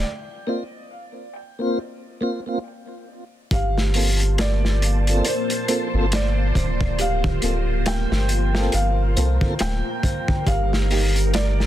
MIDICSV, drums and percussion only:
0, 0, Header, 1, 2, 480
1, 0, Start_track
1, 0, Key_signature, -2, "minor"
1, 0, Tempo, 869565
1, 18, Time_signature, 4, 2, 24, 8
1, 6439, End_track
2, 0, Start_track
2, 0, Title_t, "Drums"
2, 1938, Note_on_c, 9, 36, 111
2, 1940, Note_on_c, 9, 42, 80
2, 1993, Note_off_c, 9, 36, 0
2, 1995, Note_off_c, 9, 42, 0
2, 2084, Note_on_c, 9, 38, 42
2, 2139, Note_off_c, 9, 38, 0
2, 2174, Note_on_c, 9, 46, 89
2, 2229, Note_off_c, 9, 46, 0
2, 2318, Note_on_c, 9, 42, 42
2, 2374, Note_off_c, 9, 42, 0
2, 2419, Note_on_c, 9, 42, 80
2, 2423, Note_on_c, 9, 38, 125
2, 2474, Note_off_c, 9, 42, 0
2, 2478, Note_off_c, 9, 38, 0
2, 2565, Note_on_c, 9, 38, 35
2, 2621, Note_off_c, 9, 38, 0
2, 2662, Note_on_c, 9, 42, 71
2, 2717, Note_off_c, 9, 42, 0
2, 2800, Note_on_c, 9, 42, 50
2, 2855, Note_off_c, 9, 42, 0
2, 2895, Note_on_c, 9, 42, 83
2, 2951, Note_off_c, 9, 42, 0
2, 3036, Note_on_c, 9, 42, 46
2, 3091, Note_off_c, 9, 42, 0
2, 3137, Note_on_c, 9, 42, 62
2, 3193, Note_off_c, 9, 42, 0
2, 3378, Note_on_c, 9, 42, 87
2, 3384, Note_on_c, 9, 38, 104
2, 3433, Note_off_c, 9, 42, 0
2, 3439, Note_off_c, 9, 38, 0
2, 3617, Note_on_c, 9, 36, 79
2, 3620, Note_on_c, 9, 42, 68
2, 3672, Note_off_c, 9, 36, 0
2, 3675, Note_off_c, 9, 42, 0
2, 3757, Note_on_c, 9, 36, 89
2, 3812, Note_off_c, 9, 36, 0
2, 3856, Note_on_c, 9, 42, 76
2, 3911, Note_off_c, 9, 42, 0
2, 3997, Note_on_c, 9, 36, 86
2, 4052, Note_off_c, 9, 36, 0
2, 4096, Note_on_c, 9, 42, 69
2, 4151, Note_off_c, 9, 42, 0
2, 4337, Note_on_c, 9, 42, 86
2, 4341, Note_on_c, 9, 38, 109
2, 4393, Note_off_c, 9, 42, 0
2, 4396, Note_off_c, 9, 38, 0
2, 4482, Note_on_c, 9, 38, 56
2, 4537, Note_off_c, 9, 38, 0
2, 4575, Note_on_c, 9, 42, 68
2, 4630, Note_off_c, 9, 42, 0
2, 4718, Note_on_c, 9, 38, 54
2, 4773, Note_off_c, 9, 38, 0
2, 4814, Note_on_c, 9, 42, 89
2, 4870, Note_off_c, 9, 42, 0
2, 5061, Note_on_c, 9, 42, 59
2, 5116, Note_off_c, 9, 42, 0
2, 5195, Note_on_c, 9, 36, 92
2, 5251, Note_off_c, 9, 36, 0
2, 5294, Note_on_c, 9, 42, 94
2, 5302, Note_on_c, 9, 38, 116
2, 5349, Note_off_c, 9, 42, 0
2, 5357, Note_off_c, 9, 38, 0
2, 5538, Note_on_c, 9, 36, 90
2, 5540, Note_on_c, 9, 42, 72
2, 5594, Note_off_c, 9, 36, 0
2, 5595, Note_off_c, 9, 42, 0
2, 5676, Note_on_c, 9, 36, 98
2, 5731, Note_off_c, 9, 36, 0
2, 5777, Note_on_c, 9, 36, 105
2, 5777, Note_on_c, 9, 42, 76
2, 5832, Note_off_c, 9, 36, 0
2, 5832, Note_off_c, 9, 42, 0
2, 5924, Note_on_c, 9, 38, 46
2, 5979, Note_off_c, 9, 38, 0
2, 6020, Note_on_c, 9, 46, 81
2, 6075, Note_off_c, 9, 46, 0
2, 6159, Note_on_c, 9, 42, 42
2, 6214, Note_off_c, 9, 42, 0
2, 6258, Note_on_c, 9, 42, 78
2, 6263, Note_on_c, 9, 38, 106
2, 6313, Note_off_c, 9, 42, 0
2, 6319, Note_off_c, 9, 38, 0
2, 6404, Note_on_c, 9, 38, 37
2, 6439, Note_off_c, 9, 38, 0
2, 6439, End_track
0, 0, End_of_file